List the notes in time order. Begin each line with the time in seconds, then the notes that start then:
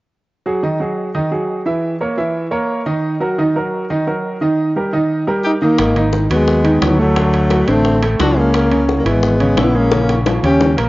0.46 F#3 F#4 G#4
0.63 D#3 D#4 D#5
0.80 F#3 F#4 G#4
1.15 D#3 D#4 D#5
1.31 F#3 F#4 G#4
1.66 E3 E4 E5
2.01 A#3 A#4 C#5
2.17 E3 E4 E5
2.51 A#3 A#4 C#5
2.86 D#3 D#4 D#5
3.20 F#3 F#4 A#4
3.38 D#3 D#4 D#5
3.56 F#3 F#4 A#4
3.90 D#3 D#4 D#5
4.07 F#3 F#4 A#4
4.41 D#3 D#4 D#5
4.76 G3 G4 A#4
4.93 D#3 D#4 D#5
5.27 G3 G4 A#4
5.44 D#4 G4
5.62 D#3 A#3 D#4 D#5
5.79 G#1, high bongo, high timbale
5.95 D#3 D#4, high timbale
6.13 high bongo, low timbale
6.30 D#2 F#3 G#3 B3 F#4, high timbale
6.48 high bongo
6.64 D#3 D#4, high timbale
6.82 D2 F#3 B3, high bongo, low bongo, high timbale, low timbale
6.99 F#3 A3 A4
7.16 D3 D4, high bongo, high timbale
7.33 high bongo, high timbale
7.50 F#3 F#4, high bongo, high timbale, low timbale
7.68 A1 D3 A3 C4 D4, high bongo, high timbale
7.85 high bongo
8.02 A3 A4, high bongo, high timbale
8.19 C#2 F#3 D4 F#4, high bongo, low bongo, high timbale, low timbale
8.36 G#3 A#3 C#4 G#4
8.54 high bongo, high timbale
8.71 C#3 C#4, high timbale
8.88 high bongo, low timbale
8.99 G3 A#3
9.05 G#1 E3 G#3 B3 E4, high timbale
9.23 high bongo
9.40 C#3 C#4, high timbale
9.57 A#1 B3 E4, high bongo, low bongo, high timbale, low timbale
9.75 G#3 A#3 C#4 G#4
9.92 C#3 C#4, high bongo, high timbale
10.09 high bongo, high timbale
10.26 F3 F4, low bongo, high timbale, low timbale
10.43 D#2 C#3 C#4 G4, high timbale
10.61 low bongo
10.77 A#1 A#3 A#4, high timbale